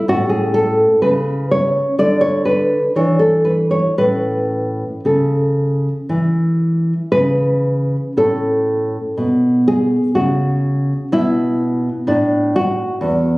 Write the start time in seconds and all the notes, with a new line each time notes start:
0.08 A2 C#4 F#4
0.29 G#4
0.54 A4
1.02 C#3 B4
1.51 C#5
1.99 D3 D4 D5
2.21 C#5
2.45 B4
2.96 E3 D4 C#5
3.19 A4
3.45 B4
3.71 C#5
3.98 A2 C#4 B4
5.05 C#3 A4
6.09 E3
7.12 C#3 B4
8.17 A2 C#4 A4
9.17 B2
9.68 G#4
10.15 C#3 F#4
11.12 B2 E4
12.07 A2 D4
12.56 F#4
13.01 E2